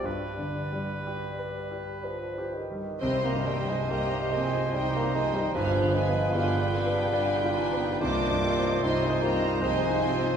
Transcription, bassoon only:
X:1
M:3/4
L:1/16
Q:1/4=72
K:Cm
V:1 name="Bassoon" clef=bass
G,4 G,4 F,2 E,2 | C B, G, A, B,2 A,2 G, B, A, G, | F,2 A,2 G,8 | D4 C A, B,2 A,3 z |]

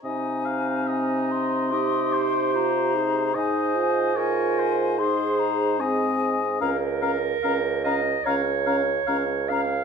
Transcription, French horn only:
X:1
M:4/4
L:1/8
Q:1/4=73
K:Ab
V:1 name="French horn"
C4 E2 F E | E F F2 E2 C2 | D D D D D D D D |]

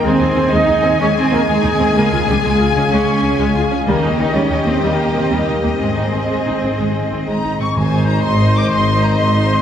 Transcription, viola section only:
X:1
M:12/8
L:1/8
Q:3/8=125
K:Ab
V:1 name="Viola section"
A, E C A, E C A, z C A, E C | A, F D A, F D A, z D A, F D | G, E B, G, E B, G, z B, G, E B, | A, E C A, E C A, z C A, E C |
z [Ec]3 [Ec]3 [Ec]3 [Ec]2 |]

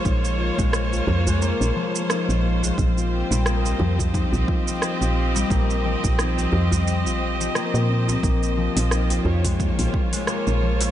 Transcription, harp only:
X:1
M:4/4
L:1/16
Q:"Swing 16ths" 1/4=88
K:Bbdor
V:1 name="Harp"
E z F A, z F2 A, B, z F,2 E z F A, | z F2 G, B, z F,2 E z F G, z F2 G, | B, z F,2 E z F G, z F z F, B, z C z | B, z F,2 E z F A, z F2 A, B, z F,2 |]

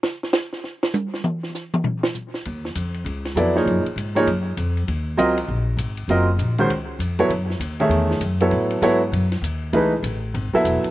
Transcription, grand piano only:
X:1
M:4/4
L:1/8
Q:"Swing" 1/4=198
K:Gblyd
V:1 name="Grand piano"
z8 | z8 | z6 [G,_C_F=A=d] [=F,B,E_A_d]- | [F,B,EAd] z2 [F,B,EAd] z4 |
z2 [G,CFBe] z4 z | [G,CFBe] z2 [E,A,DGc] z3 [G,_C_F=Ad] | z3 [E,=A,_Ad_f]3 z [G,_C_F=Ad]- | [G,_C_F=Ad]2 [G,CFAd] z4 z |
[_F,=A,E_A_c] z4 [G,_C_F=A_f]3 |]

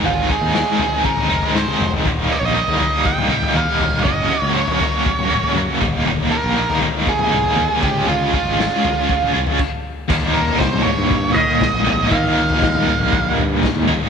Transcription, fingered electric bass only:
X:1
M:4/4
L:1/16
Q:1/4=119
K:Ebmix
V:1 name="Fingered electric bass" clef=bass
A,,,2 z E,,2 z4 z F,,, z A,, z F,,,2 | E,,,2 z B,,,2 z4 z C,, z E,, z E,,,2 | _G,,,2 z D,,2 z4 z E,,, z _G,, z E,,,2 | E,,,2 z B,,,2 z4 z C,, z E,, z D,,2 |
D,,2 z A,,,2 z4 z C,, z4 z | E,,4 C,,2 z G,,3 E,3 B,,,3 | E,4 E,,2 z B,,,3 G,,3 E,,2 z |]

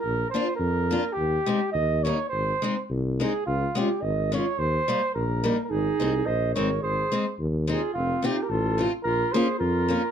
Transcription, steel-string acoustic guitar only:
X:1
M:2/4
L:1/8
Q:"Swing" 1/4=107
K:Ab
V:1 name="Steel-string acoustic guitar"
z [B,=DF] z [B,DF] | z [A,CE] z [G,B,E] | z [A,CE] z [A,CE] | z [A,DF] z [A,DF] |
z [G,B,E] z [G,B,E] | z [A,CE] z [A,CE] | z [A,CE] z [A,CE] | z [=A,CF] z [A,CF] |
z [B,DF] z [B,DF] |]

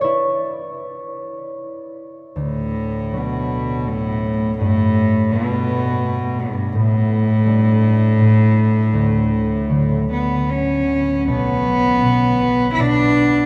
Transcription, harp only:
X:1
M:3/4
L:1/8
Q:1/4=81
K:D
V:1 name="Harp" clef=bass
[Ec]4- [Ec] z | D,,2 [F,A,D]4 | G,,2 [G,A,B,]4 | A,,2 [G,A,D]2 A,,2 |
D,,2 [D,F,A,]4 | [B,,,B,,] F, B,, F, B,,2 |]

